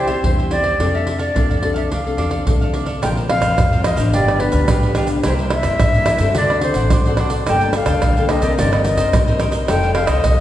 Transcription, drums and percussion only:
0.08 pandeiro, surdo
0.24 pandeiro, surdo
0.39 pandeiro
0.51 pandeiro
0.64 pandeiro, surdo
0.80 pandeiro, surdo
0.95 pandeiro
1.07 pandeiro
1.19 pandeiro
1.36 pandeiro, surdo
1.51 pandeiro
1.63 pandeiro
1.76 pandeiro, surdo
1.92 pandeiro, surdo
2.07 pandeiro, surdo
2.18 pandeiro
2.31 pandeiro, surdo
2.47 pandeiro, surdo
2.62 pandeiro
2.74 pandeiro
2.86 pandeiro, surdo
3.03 pandeiro, tamborim, shaker, surdo
3.17 pandeiro, shaker
3.29 pandeiro, tamborim
3.42 pandeiro, tamborim, shaker, surdo
3.58 pandeiro, tamborim, shaker, surdo
3.73 pandeiro, shaker
3.84 pandeiro, tamborim, shaker, surdo
3.97 pandeiro, shaker, surdo
4.13 pandeiro, shaker, surdo
4.28 pandeiro, tamborim, shaker
4.40 pandeiro
4.52 pandeiro, shaker, surdo
4.68 pandeiro, tamborim, shaker, surdo
4.83 pandeiro, shaker
4.95 pandeiro, tamborim, shaker
5.07 pandeiro, shaker
5.23 pandeiro, tamborim, shaker, surdo
5.39 pandeiro, shaker
5.50 pandeiro, tamborim
5.63 pandeiro, tamborim, shaker, surdo
5.80 pandeiro, tamborim, shaker, surdo
5.94 pandeiro, shaker
6.06 pandeiro, tamborim, shaker, surdo
6.18 pandeiro, shaker, surdo
6.35 pandeiro, shaker, surdo
6.50 pandeiro, tamborim, shaker
6.61 pandeiro
6.74 pandeiro, shaker, surdo
6.90 pandeiro, tamborim, shaker, surdo
7.06 pandeiro, shaker
7.17 pandeiro, tamborim
7.30 pandeiro, shaker
7.47 pandeiro, tamborim, shaker, surdo
7.61 pandeiro, shaker
7.73 pandeiro, tamborim, shaker
7.86 pandeiro, tamborim, shaker, surdo
8.02 pandeiro, tamborim, shaker, surdo
8.17 pandeiro, shaker
8.29 pandeiro, tamborim, surdo
8.42 pandeiro, shaker, surdo
8.59 pandeiro, shaker, surdo
8.73 pandeiro, tamborim, shaker
8.84 pandeiro, shaker
8.97 pandeiro, shaker, surdo
9.13 pandeiro, tamborim, shaker, surdo
9.28 pandeiro, shaker
9.40 pandeiro, tamborim, shaker
9.52 pandeiro, shaker
9.68 pandeiro, tamborim, shaker, surdo
9.83 pandeiro, shaker
9.95 pandeiro, tamborim
10.07 pandeiro, tamborim, shaker, surdo
10.24 pandeiro, tamborim, shaker, surdo

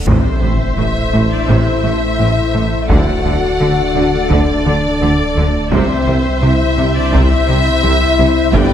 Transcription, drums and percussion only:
0.07 taiko
0.42 taiko low
1.48 taiko
2.90 taiko
3.25 taiko low
4.31 taiko
5.72 taiko
6.08 taiko low
7.13 taiko
8.54 taiko

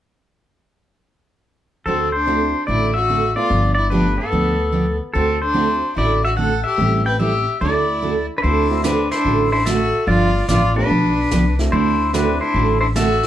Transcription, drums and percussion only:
8.43 brush sweep
8.84 snare, hi-hat pedal
9.11 snare
9.25 brush sweep
9.66 snare, hi-hat pedal
10.07 brush sweep
10.48 snare, hi-hat pedal
10.90 brush sweep
11.31 snare, hi-hat pedal
11.59 snare
11.73 brush sweep
12.14 snare, hi-hat pedal
12.55 brush sweep
12.96 snare, hi-hat pedal
13.23 snare

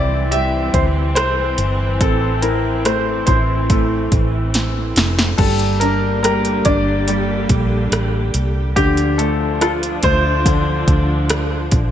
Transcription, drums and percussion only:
0.32 closed hi-hat
0.74 kick, closed hi-hat
1.16 cross-stick, closed hi-hat
1.58 closed hi-hat
2.01 kick, closed hi-hat
2.42 closed hi-hat
2.85 cross-stick, closed hi-hat
3.27 kick, closed hi-hat
3.70 kick, closed hi-hat
4.12 kick, closed hi-hat
4.54 snare, closed hi-hat
4.96 snare, closed hi-hat
5.19 snare
5.38 kick, crash
5.59 closed hi-hat
5.81 closed hi-hat
6.24 cross-stick, closed hi-hat
6.45 closed hi-hat
6.65 kick, closed hi-hat
7.08 closed hi-hat
7.49 kick, closed hi-hat
7.92 cross-stick, closed hi-hat
8.34 closed hi-hat
8.77 kick, closed hi-hat
8.97 closed hi-hat
9.19 closed hi-hat
9.61 cross-stick, closed hi-hat
9.83 closed hi-hat
10.03 kick, closed hi-hat
10.46 kick, closed hi-hat
10.88 kick, closed hi-hat
11.30 cross-stick, closed hi-hat
11.71 kick, closed hi-hat

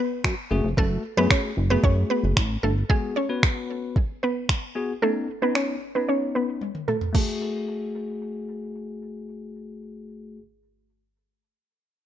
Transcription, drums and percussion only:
0.24 finger snap, kick
0.77 kick
1.31 finger snap, kick
1.84 kick
2.37 finger snap, kick
2.90 kick
3.43 finger snap, kick
3.96 kick
4.49 finger snap, kick
5.55 finger snap
6.61 high tom
6.75 mid tom
6.88 mid tom
7.01 floor tom
7.15 kick, crash

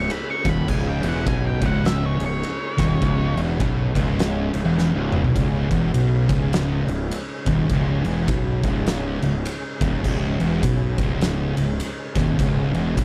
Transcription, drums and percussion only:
0.10 ride
0.45 kick, snare, ride
0.68 kick, crash
1.03 ride
1.26 kick, ride
1.62 kick, ride
1.85 snare, ride
2.20 ride
2.43 ride
2.78 kick, snare, ride
3.02 kick, ride
3.37 ride
3.60 kick, ride
3.95 kick, ride
4.19 snare, ride
4.54 ride
4.78 snare
5.12 mid tom
5.24 floor tom
5.36 kick, ride
5.71 kick, ride
5.94 ride
6.29 kick, ride
6.53 snare, ride
6.88 ride
7.11 ride
7.46 kick, ride
7.69 kick, ride
8.05 ride
8.28 kick, ride
8.63 kick, ride
8.86 snare, ride
9.22 ride
9.45 ride
9.81 kick, ride
10.04 kick, crash
10.40 ride
10.63 kick, ride
10.98 kick, ride
11.21 snare, ride
11.57 ride
11.80 ride
12.15 kick, snare, ride
12.39 kick, ride
12.74 ride
12.97 kick, ride

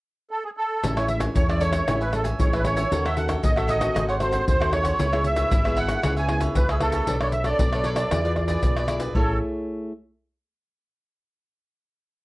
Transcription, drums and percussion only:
0.84 pandeiro, shaker, surdo
0.97 pandeiro, tamborim, shaker
1.08 pandeiro, shaker
1.20 pandeiro, tamborim, shaker, surdo
1.35 pandeiro, shaker, surdo
1.50 pandeiro, tamborim, shaker
1.61 pandeiro, shaker
1.73 pandeiro, tamborim, shaker, surdo
1.88 pandeiro, tamborim, shaker, surdo
2.01 pandeiro, shaker
2.13 pandeiro, tamborim, shaker
2.25 pandeiro, shaker, surdo
2.39 pandeiro, shaker, surdo
2.53 pandeiro, tamborim, shaker
2.64 pandeiro, tamborim, shaker
2.77 pandeiro, shaker, surdo
2.92 pandeiro, shaker, surdo
3.05 pandeiro, tamborim, shaker
3.17 pandeiro, shaker
3.29 pandeiro, tamborim, shaker, surdo
3.43 pandeiro, shaker, surdo
3.57 pandeiro, tamborim, shaker
3.69 pandeiro, shaker
3.81 pandeiro, tamborim, shaker, surdo
3.96 pandeiro, tamborim, shaker, surdo
4.09 pandeiro, shaker
4.20 pandeiro, tamborim, shaker
4.32 pandeiro, shaker, surdo
4.48 pandeiro, shaker, surdo
4.62 pandeiro, tamborim, shaker
4.73 pandeiro, tamborim
4.85 pandeiro, shaker, surdo
4.99 pandeiro, shaker, surdo
5.13 pandeiro, tamborim, shaker
5.24 pandeiro, shaker
5.36 pandeiro, tamborim, shaker, surdo
5.51 pandeiro, shaker, surdo
5.65 pandeiro, tamborim, shaker
5.76 pandeiro
5.89 pandeiro, tamborim, shaker, surdo
6.03 pandeiro, tamborim, shaker, surdo
6.17 pandeiro, shaker
6.29 pandeiro, tamborim
6.41 pandeiro, shaker, surdo
6.55 pandeiro, shaker, surdo
6.69 pandeiro, tamborim, shaker
6.81 pandeiro, tamborim
6.92 pandeiro, shaker, surdo
7.07 pandeiro, shaker, surdo
7.21 pandeiro, tamborim, shaker
7.32 pandeiro, shaker
7.44 pandeiro, tamborim, shaker, surdo
7.59 pandeiro, shaker, surdo
7.73 pandeiro, tamborim, shaker
7.84 pandeiro
7.96 pandeiro, tamborim, shaker, surdo
8.11 pandeiro, tamborim, shaker, surdo
8.25 pandeiro, shaker
8.36 pandeiro, tamborim, shaker, surdo
8.48 pandeiro, shaker, surdo
8.63 pandeiro, shaker, surdo
8.76 pandeiro, tamborim, shaker
8.88 pandeiro, tamborim, shaker
9.00 pandeiro, shaker, surdo
9.15 surdo

